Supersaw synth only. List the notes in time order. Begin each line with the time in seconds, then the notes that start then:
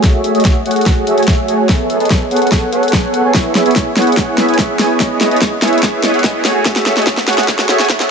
0.03 A3 F#4 G#4 C#5 E5
0.24 A3 F#4 G#4 C#5 E5
0.35 A3 F#4 G#4 C#5 D#5
0.45 A3 F#4 G#4 C#5 E5
0.65 A3 F#4 G#4 C#5 F#5
0.86 A3 F#4 G#4 C#5 F#5
1.07 A3 F#4 G#4 C#5 E5
1.17 A3 F#4 G#4 C#5 G#5
1.27 A3 F#4 G#4 C#5 E5
1.48 A3 F#4 G#4 C#5 G#5
1.69 B3 G#4 A4 C#5 E5
1.90 B3 G#4 A4 C#5 E5
2.00 B3 G#4 A4 C#5 D#5
2.10 B3 G#4 A4 C#5 E5
2.31 B3 G#4 A4 C#5 F#5
2.52 B3 G#4 A4 C#5 F#5
2.73 B3 G#4 A4 C#5 F#5
3.04 B3 G#4 A4 C#5 F#5
3.24 B3 G#4 A4 C#5 G#5
3.35 B3 E4 G#4 C#5 E5
3.55 B3 E4 G#4 C#5 E5
3.66 B3 E4 G#4 C#5 E5
3.76 B3 E4 G#4 C#5 E5
3.97 B3 E4 G#4 C#5 F#5
4.17 B3 E4 G#4 C#5 F#5
4.38 B3 E4 G#4 C#5 E5
4.48 B3 E4 G#4 C#5 G#5
4.59 B3 E4 G#4 C#5 E5
4.79 B3 E4 G#4 C#5 G#5
5.00 B3 E4 G#4 C#5 D#5
5.21 B3 E4 G#4 C#5 D#5
5.31 B3 E4 G#4 C#5 D#5
5.41 B3 E4 G#4 C#5 D#5
5.62 B3 E4 G#4 C#5 E5
5.83 B3 E4 G#4 C#5 E5
6.03 B3 E4 G#4 C#5 D#5
6.14 B3 E4 G#4 C#5 F#5
6.24 B3 E4 G#4 C#5 D#5
6.45 A3 F#4 G#4 C#5 G#5
6.65 A3 F#4 G#4 C#5 E5
6.86 A3 F#4 G#4 C#5 E5
6.97 A3 F#4 G#4 C#5 D#5
7.07 A3 F#4 G#4 C#5 E5
7.28 A3 F#4 G#4 C#5 F#5
7.48 A3 F#4 G#4 C#5 F#5
7.69 A3 F#4 G#4 C#5 E5
7.80 A3 F#4 G#4 C#5 G#5
7.90 A3 F#4 G#4 C#5 E5